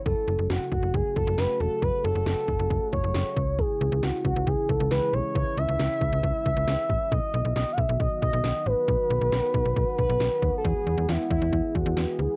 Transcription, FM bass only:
\new Staff \with { instrumentName = "FM bass" } { \clef bass \time 4/4 \key fis \minor \tempo 4 = 136 fis,,16 r16 fis,,16 fis,,16 fis,,16 r16 fis,,16 fis,,16 fis,,16 r16 fis,,16 fis,,16 fis,,16 r16 e,,16 r16 | fis,,16 r16 fis,,16 fis,,16 fis,,16 r16 fis,,16 fis,,16 fis,,16 r16 fis,,16 fis,,16 fis,,16 r16 cis,8~ | cis,16 r16 cis,16 cis,16 cis,16 r16 cis,16 cis,16 cis,16 r16 cis,16 cis,16 cis,16 r16 b,,16 r16 | cis,16 r16 cis,16 cis,16 cis,16 r16 cis,16 cis,16 cis,16 r16 cis,16 cis,16 cis,16 r16 a,,16 r16 |
b,,16 r16 b,,16 b,,16 b,,16 r16 b,,16 b,,16 b,,16 r16 b,,16 b,,16 b,,16 r16 a,,16 r16 | b,,16 r16 b,,16 b,,16 b,,16 r16 b,,16 b,,16 b,,16 r16 b,,16 b,,16 b,,16 r16 dis,16 r16 | e,16 r16 e,16 e,16 e,16 r16 e,16 e,16 e,16 r16 e,16 e,16 e,16 r16 d,16 r16 | }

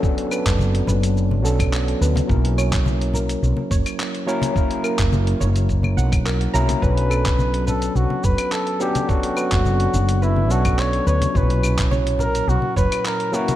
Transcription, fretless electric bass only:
\new Staff \with { instrumentName = "Fretless electric bass" } { \clef bass \time 4/4 \key b \minor \tempo 4 = 106 r8. fis,,8 r16 fis,,4 b,,8. r16 d,16 r16 | b,,4.~ b,,16 r16 b,,16 r16 fis,,16 r4 r16 | r8. fis,,8 r16 fis,,4 b,,8. r16 b,,16 r16 | b,,4.~ b,,16 r16 b,,16 r16 fis,,16 r4 r16 |
r8. fis,,8 r16 fis,,4 b,,8. r16 d,16 r16 | b,,4.~ b,,16 r16 b,,16 r16 fis,,16 r4 r16 | }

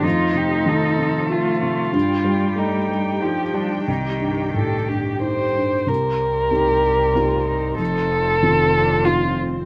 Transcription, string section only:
\new Staff \with { instrumentName = "String section" } { \time 3/4 \key c \dorian \tempo 4 = 94 << { <a c''>2. | <g g''>2.~ | <g g''>2. | <c' c''>2.~ |
<c' c''>2. | } \\ { f'2. | g'2.~ | g'2. | g'2. |
f'2. | } >> }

